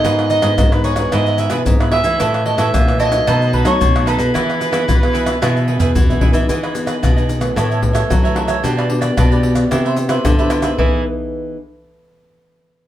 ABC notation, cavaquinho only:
X:1
M:4/4
L:1/16
Q:1/4=112
K:E
V:1 name="Cavaquinho"
[DGBd]2 [DGBd] [DGBd] z2 [DGBd] [GBd] [EGBe] [GBe] [EGBe] [EGBe] z [GBe] [EGBe] [GBe] | [EAce]2 [EAce] [EAce] z2 [EAce] [Ace] [DABd] [ABd] [DABd] [DABd] z [ABd] [DABd] [ABd] | [EGBe]2 [EGBe] [EGBe] z2 [EGBe] [GBe] [EGBe] [GBe] [EGBe] [EGBe] z [GBe] [EGBe] [GBe] | [EGBd] [GBd] z [GBd] [EGBd] [GBd]3 [EAce] [Ace] z [Ace]2 [Ace] [EAce] [Ace] |
[=D=GB=d] [GBd] z [GBd] [DGBd] [GBd]3 [EB=ce] [Bce] z [Bce]2 [Bce] [EBce] [Bce] | [EGBd]2 z12 z2 |]